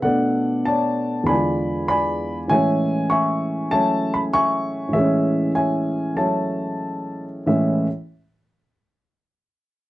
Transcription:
0.02 B2 A3 B3 A4 D5 F#5
0.07 D4
0.65 C#5 D5 A5
1.23 E2 D3 B5
1.28 G#3 D5 G#5
1.34 F4
1.88 D5 G#5 B5
2.48 A2 E3 C#5 E5 G#5
2.52 G#3 C#4
3.10 E5 G#5 C#6
3.71 F#3 A3 C#4 C#5 E5 A5
4.14 B5
4.33 E5 G#5 C#6
4.89 A2 E3
4.93 G#3 G#4 C#5 E5
4.99 C#4
5.55 C#5 E5 G#5
6.15 F#3 A3 C#4 C#5 E5 A5
7.46 A2 E3 G#3 C#4 E5

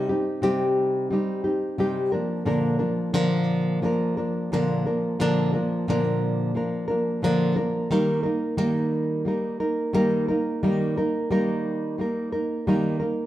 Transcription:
0.09 C4 D#4 G4
0.42 C3 G3 C4 D#4 G4
1.11 G3 C4 D#4 G4
1.44 C4 D#4 G4
1.78 C3 G3 C4 D#4 G4
2.12 F3 A#3 D4 A#4
2.45 A#2 D3 F3 A#3 D4 A#4
2.79 F3 A#3 D4 A#4
3.13 A#2 D3 F3 A#3 D4 A#4
3.82 F3 A#3 D4 A#4
4.17 F3 A#3 D4 A#4
4.52 A#2 D3 F3 A#3 D4 A#4
4.86 F3 A#3 D4 A#4
5.19 A#2 D3 F3 A#3 D4 A#4
5.54 F3 A#3 D4 A#4
5.88 A#2 D3 F3 A#3 D4 A#4
6.55 F3 A#3 D4 A#4
6.88 F3 A#3 D4 A#4
7.22 A#2 D3 F3 A#3 D4 A#4
7.56 F3 A#3 D4 A#4
7.90 D#3 G3 A#3 D#4 A#4
8.23 A#3 D#4 A#4
8.57 D#3 G3 A#3 D#4 A#4
9.25 G3 A#3 D#4 A#4
9.60 A#3 D#4 A#4
9.93 D#3 G3 A#3 D#4 A#4
10.28 A#3 D#4 A#4
10.63 D#3 G3 A#3 D#4 A#4
10.98 A#3 D#4 A#4
11.31 D#3 G3 A#3 D#4 A#4
11.98 G3 A#3 D#4 A#4
12.32 A#3 D#4 A#4
12.67 D#3 G3 A#3 D#4 A#4
13.00 A#3 D#4 A#4

